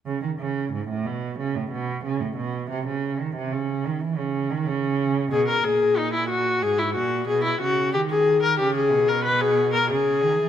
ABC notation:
X:1
M:4/4
L:1/16
Q:1/4=92
K:C#m
V:1 name="Viola"
z16 | z16 | G ^A G2 D E F2 G E F2 G E F2 | =G ^G2 ^A =G ^G2 A B G2 A G4 |]
V:2 name="Cello" clef=bass
C, D, C,2 G,, A,, B,,2 C, A,, B,,2 C, A,, B,,2 | =C, ^C,2 _E, =C, ^C,2 E, =E, C,2 D, C,4 | B,,2 ^A,,6 G,,2 A,,2 B,,2 C,2 | D,4 C,2 B,,6 C,2 D, E, |]